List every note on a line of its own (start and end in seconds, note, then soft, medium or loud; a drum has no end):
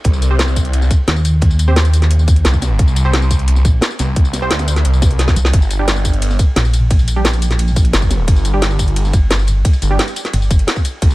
0.04 0.89 C2 loud
0.04 kick loud
0.04 closed hi-hat medium
0.04 ride medium
0.13 tambourine soft
0.22 closed hi-hat medium
0.22 ride medium
0.22 tambourine medium
0.31 0.46 C4 medium
0.31 0.46 G4 medium
0.31 0.46 C5 medium
0.39 snare loud
0.39 closed hi-hat medium
0.39 ride medium
0.48 tambourine soft
0.56 kick medium
0.56 closed hi-hat medium
0.56 ride medium
0.56 tambourine medium
0.65 closed hi-hat soft
0.73 closed hi-hat medium
0.73 ride medium
0.82 snare soft
0.82 tambourine soft
0.90 kick loud
0.90 closed hi-hat medium
0.90 ride medium
0.90 tambourine medium
1.08 2.44 D#2 loud
1.08 snare loud
1.08 closed hi-hat medium
1.08 ride medium
1.16 snare soft
1.16 tambourine soft
1.25 closed hi-hat medium
1.25 ride medium
1.25 tambourine medium
1.41 kick loud
1.41 closed hi-hat medium
1.41 ride loud
1.51 ride soft
1.51 tambourine soft
1.59 closed hi-hat medium
1.59 ride medium
1.59 tambourine medium
1.68 1.77 C4 medium
1.68 1.77 G4 medium
1.68 1.77 C5 medium
1.76 snare loud
1.76 closed hi-hat medium
1.76 ride medium
1.85 closed hi-hat soft
1.85 tambourine soft
1.93 closed hi-hat medium
1.93 ride medium
1.93 tambourine medium
2.02 snare soft
2.02 closed hi-hat soft
2.11 closed hi-hat medium
2.11 ride medium
2.19 tambourine soft
2.28 kick loud
2.28 closed hi-hat medium
2.28 ride medium
2.28 tambourine medium
2.36 closed hi-hat soft
2.36 ride soft
2.45 2.78 C2 loud
2.45 snare loud
2.45 closed hi-hat medium
2.45 ride medium
2.53 kick medium
2.53 tambourine soft
2.62 snare loud
2.62 closed hi-hat medium
2.62 ride medium
2.62 tambourine medium
2.79 3.64 C2 loud
2.79 kick loud
2.79 closed hi-hat medium
2.79 ride medium
2.88 tambourine soft
2.96 closed hi-hat medium
2.96 ride medium
2.96 tambourine medium
3.05 3.20 C4 medium
3.05 3.20 G4 medium
3.05 3.20 C5 medium
3.13 snare loud
3.13 closed hi-hat medium
3.13 ride medium
3.22 tambourine soft
3.31 kick medium
3.31 closed hi-hat medium
3.31 ride medium
3.31 tambourine medium
3.39 closed hi-hat soft
3.48 closed hi-hat medium
3.48 ride medium
3.56 snare soft
3.56 tambourine soft
3.65 3.81 A#1 loud
3.65 kick loud
3.65 closed hi-hat medium
3.65 ride medium
3.65 tambourine medium
3.81 snare loud
3.81 closed hi-hat medium
3.81 ride medium
3.90 snare soft
3.90 tambourine soft
3.99 4.49 C2 loud
3.99 snare loud
3.99 closed hi-hat medium
3.99 ride medium
3.99 tambourine medium
4.16 kick loud
4.16 closed hi-hat loud
4.16 ride medium
4.25 tambourine soft
4.33 snare loud
4.33 closed hi-hat medium
4.33 ride medium
4.33 tambourine medium
4.42 4.52 C4 medium
4.42 4.52 G4 medium
4.42 4.52 C5 medium
4.51 4.84 D2 loud
4.51 snare loud
4.51 closed hi-hat loud
4.51 ride medium
4.59 snare loud
4.59 closed hi-hat soft
4.59 ride medium
4.59 tambourine soft
4.68 closed hi-hat medium
4.68 tambourine medium
4.76 snare soft
4.76 closed hi-hat soft
4.76 ride medium
4.85 5.35 C2 loud
4.85 closed hi-hat loud
4.85 ride medium
4.93 tambourine soft
5.02 kick loud
5.02 snare loud
5.02 closed hi-hat medium
5.02 ride medium
5.02 tambourine medium
5.11 closed hi-hat soft
5.19 snare medium
5.19 closed hi-hat medium
5.19 ride medium
5.28 kick medium
5.28 snare medium
5.28 snare loud
5.28 ride medium
5.28 tambourine soft
5.36 5.52 C2 medium
5.36 closed hi-hat medium
5.36 tambourine medium
5.45 snare medium
5.45 ride medium
5.53 6.38 G1 loud
5.53 kick loud
5.53 closed hi-hat loud
5.53 ride medium
5.53 ride loud
5.62 tambourine soft
5.70 closed hi-hat medium
5.70 ride medium
5.70 tambourine medium
5.79 5.94 G3 medium
5.79 5.95 D4 medium
5.79 5.95 G4 medium
5.88 snare loud
5.88 closed hi-hat loud
5.88 ride medium
5.88 ride loud
5.96 tambourine soft
6.05 kick medium
6.05 closed hi-hat medium
6.05 ride medium
6.05 tambourine medium
6.13 closed hi-hat soft
6.22 closed hi-hat loud
6.22 ride medium
6.30 snare soft
6.30 tambourine soft
6.39 kick loud
6.39 closed hi-hat medium
6.39 ride medium
6.39 tambourine medium
6.56 7.92 A#1 medium
6.56 snare loud
6.56 closed hi-hat medium
6.56 ride medium
6.65 snare soft
6.65 tambourine soft
6.73 closed hi-hat medium
6.73 ride medium
6.73 tambourine medium
6.91 kick loud
6.91 closed hi-hat loud
6.91 ride medium
6.99 ride soft
6.99 tambourine soft
7.08 closed hi-hat medium
7.08 ride medium
7.08 tambourine medium
7.16 7.26 G3 medium
7.16 7.26 D4 medium
7.16 7.26 G4 medium
7.24 snare loud
7.24 closed hi-hat loud
7.24 ride loud
7.24 ride medium
7.33 closed hi-hat soft
7.33 tambourine soft
7.42 closed hi-hat medium
7.42 ride medium
7.42 tambourine medium
7.51 snare soft
7.51 closed hi-hat soft
7.59 closed hi-hat loud
7.59 ride medium
7.68 tambourine soft
7.76 kick loud
7.76 closed hi-hat medium
7.76 ride medium
7.76 tambourine medium
7.84 closed hi-hat soft
7.84 ride soft
7.93 8.26 G1 loud
7.93 snare loud
7.93 closed hi-hat loud
7.93 ride medium
8.02 kick medium
8.02 tambourine soft
8.10 snare loud
8.10 closed hi-hat medium
8.10 ride medium
8.10 tambourine medium
8.28 9.12 G1 loud
8.28 kick loud
8.28 closed hi-hat loud
8.28 ride medium
8.36 tambourine soft
8.45 closed hi-hat medium
8.45 ride medium
8.45 tambourine medium
8.54 8.69 G3 medium
8.54 8.69 D4 medium
8.54 8.69 G4 medium
8.62 snare loud
8.62 closed hi-hat loud
8.62 ride medium
8.71 tambourine soft
8.79 kick medium
8.79 closed hi-hat medium
8.79 ride medium
8.79 tambourine medium
8.88 closed hi-hat soft
8.96 closed hi-hat loud
8.96 ride medium
9.05 snare soft
9.05 tambourine soft
9.13 9.64 G1 medium
9.13 kick loud
9.13 closed hi-hat medium
9.13 ride medium
9.13 ride soft
9.13 tambourine medium
9.30 snare loud
9.30 closed hi-hat loud
9.30 ride medium
9.39 snare soft
9.39 tambourine soft
9.47 closed hi-hat medium
9.47 ride medium
9.47 tambourine medium
9.65 kick loud
9.65 closed hi-hat medium
9.65 ride medium
9.73 ride soft
9.73 tambourine soft
9.82 9.98 G1 loud
9.82 closed hi-hat medium
9.82 ride medium
9.82 tambourine medium
9.91 10.00 G3 medium
9.91 10.00 D4 medium
9.91 10.00 G4 medium
9.99 snare loud
9.99 closed hi-hat loud
9.99 ride medium
10.08 closed hi-hat soft
10.08 tambourine soft
10.16 closed hi-hat medium
10.16 ride medium
10.16 tambourine medium
10.25 snare soft
10.25 closed hi-hat soft
10.33 10.49 G1 medium
10.33 closed hi-hat medium
10.33 ride medium
10.42 tambourine soft
10.51 10.66 G1 loud
10.51 kick loud
10.51 closed hi-hat medium
10.51 ride medium
10.51 tambourine medium
10.59 closed hi-hat soft
10.59 ride soft
10.67 snare loud
10.67 closed hi-hat medium
10.67 ride medium
10.76 kick medium
10.76 tambourine soft
10.85 closed hi-hat medium
10.85 ride medium
10.85 tambourine medium
11.02 11.15 C2 loud
11.02 kick loud
11.02 closed hi-hat medium
11.02 ride medium
11.11 tambourine soft